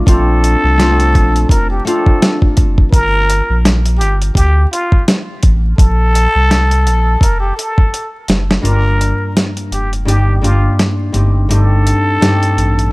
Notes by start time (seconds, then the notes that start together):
Already playing: G3
0.06 A#1 A3 C4 D4 F4 A4, kick, closed hi-hat
0.44 closed hi-hat
0.64 C2
0.77 A3 C4 D4 F4, snare, closed hi-hat
1.00 closed hi-hat
1.15 A#1, kick, closed hi-hat
1.36 closed hi-hat
1.49 F1 A#4, kick, closed hi-hat
1.70 G4
1.85 A3 C4 D4 F4 A4, closed hi-hat
2.06 kick
2.22 snare, closed hi-hat
2.42 kick
2.57 F#1, kick, closed hi-hat
2.78 kick
2.92 G1 A#4, kick, closed hi-hat
3.30 closed hi-hat
3.50 A#1
3.65 snare, closed hi-hat
3.85 closed hi-hat
3.98 G1 G4, closed hi-hat
4.22 closed hi-hat
4.35 D2 G4, kick, closed hi-hat
4.72 F4, closed hi-hat
4.92 kick
5.08 snare, closed hi-hat
5.43 A1, kick, closed hi-hat
5.78 A#1 A4, kick, closed hi-hat
6.15 closed hi-hat
6.35 C2
6.51 snare, closed hi-hat
6.71 closed hi-hat
6.86 A#1, closed hi-hat
7.21 F1 A#4, kick, closed hi-hat
7.40 G4
7.57 A4, closed hi-hat
7.78 kick
7.94 closed hi-hat
8.28 F#1, snare, closed hi-hat
8.51 snare
8.62 G1 G2 A#3 D4 F4 A#4, closed hi-hat
9.01 closed hi-hat
9.37 snare, closed hi-hat
9.57 closed hi-hat
9.71 F1 G4, closed hi-hat
9.93 closed hi-hat
10.05 G1 G2 A#3 D4 D#4 G4, closed hi-hat
10.42 G2 A#3 D4 D#4 F4 G4, closed hi-hat
10.79 snare, closed hi-hat
11.12 G1 G2 A3 C4 D#4 G4, closed hi-hat
11.49 G2 A3 C4 D#4 G4 A4, closed hi-hat
11.87 closed hi-hat
12.20 G2 A3 C4 D#4 G4, snare, closed hi-hat
12.43 closed hi-hat
12.57 A1, closed hi-hat
12.79 closed hi-hat